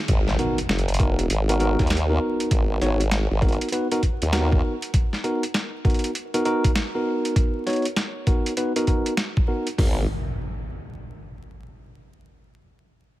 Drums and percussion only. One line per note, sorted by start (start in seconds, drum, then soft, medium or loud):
0.08 kick loud
0.08 closed hi-hat medium
0.28 snare soft
0.39 closed hi-hat soft
0.58 closed hi-hat medium
0.69 snare loud
0.69 closed hi-hat soft
0.79 closed hi-hat soft
0.88 closed hi-hat soft
0.94 closed hi-hat medium
1.00 kick loud
1.19 closed hi-hat medium
1.30 closed hi-hat medium
1.49 closed hi-hat medium
1.60 closed hi-hat soft
1.79 kick loud
1.79 snare soft
1.79 closed hi-hat soft
1.87 snare loud
1.87 closed hi-hat soft
1.90 closed hi-hat medium
1.97 closed hi-hat soft
2.40 closed hi-hat medium
2.51 kick loud
2.51 closed hi-hat medium
2.81 snare soft
2.81 closed hi-hat soft
3.00 closed hi-hat medium
3.11 snare loud
3.11 closed hi-hat medium
3.42 kick loud
3.42 closed hi-hat soft
3.48 closed hi-hat soft
3.52 closed hi-hat soft
3.61 closed hi-hat medium
3.61 closed hi-hat soft
3.69 closed hi-hat soft
3.73 closed hi-hat medium
3.92 closed hi-hat medium
4.03 kick medium
4.03 closed hi-hat soft
4.22 closed hi-hat medium
4.33 snare loud
4.33 closed hi-hat medium
4.52 kick loud
4.82 closed hi-hat medium
4.94 kick loud
4.94 closed hi-hat medium
5.13 snare soft
5.24 closed hi-hat soft
5.43 closed hi-hat medium
5.54 snare loud
5.54 closed hi-hat medium
5.85 kick loud
5.85 closed hi-hat soft
5.90 closed hi-hat soft
5.94 closed hi-hat soft
5.99 closed hi-hat soft
6.04 closed hi-hat medium
6.15 closed hi-hat medium
6.34 closed hi-hat medium
6.45 closed hi-hat soft
6.64 kick loud
6.64 closed hi-hat medium
6.75 snare loud
6.75 closed hi-hat medium
7.25 closed hi-hat medium
7.36 kick loud
7.36 closed hi-hat medium
7.67 snare soft
7.67 closed hi-hat soft
7.70 closed hi-hat soft
7.73 closed hi-hat soft
7.76 closed hi-hat soft
7.82 closed hi-hat soft
7.85 closed hi-hat medium
7.96 snare loud
7.96 closed hi-hat medium
8.27 kick loud
8.27 closed hi-hat soft
8.46 closed hi-hat medium
8.57 closed hi-hat medium
8.76 closed hi-hat medium
8.87 kick medium
8.87 closed hi-hat soft
9.06 closed hi-hat medium
9.17 snare loud
9.17 closed hi-hat medium
9.37 kick loud
9.67 closed hi-hat soft
9.78 kick loud
9.78 open hi-hat medium